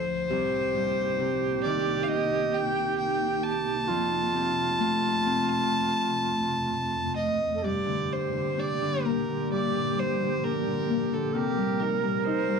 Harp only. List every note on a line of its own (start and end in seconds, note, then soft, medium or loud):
0.00 0.36 D2 medium
0.00 0.36 D3 soft
0.00 0.36 F3 medium
0.30 3.94 C2 medium
0.75 1.25 G2 medium
1.19 1.70 C3 medium
1.65 3.94 D#3 medium
3.88 7.68 F2 medium
4.34 7.68 C3 soft
4.79 8.12 A3 medium
5.26 8.26 C4 medium
7.64 9.51 G2 soft
7.86 8.31 D3 soft
8.11 8.57 D4 soft
8.33 8.80 D3 soft
8.58 9.97 D4 soft
8.81 9.27 D3 soft
9.05 10.89 A#3 soft
9.28 9.74 D3 soft
9.52 11.40 G2 medium
9.75 10.19 D3 soft
9.98 10.44 D4 soft
10.20 10.66 D3 soft
10.44 11.86 D4 soft
10.67 11.11 D3 soft
10.89 12.60 A#3 soft
11.12 11.40 D3 soft
11.35 12.60 C3 medium
11.57 12.02 G3 soft
11.80 12.26 D#4 soft
12.03 12.47 G3 soft
12.26 12.60 D#4 medium
12.48 12.60 G3 soft